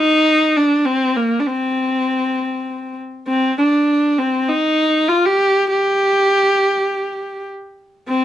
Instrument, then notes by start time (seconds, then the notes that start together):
viola
Already playing: D#4
0.56 D4
0.85 C4
1.17 A#3
1.40 D4
1.47 C4
3.27 C4
3.58 D4
4.18 C4
4.49 D#4
5.08 F4
5.26 G4
5.70 G4
8.08 C4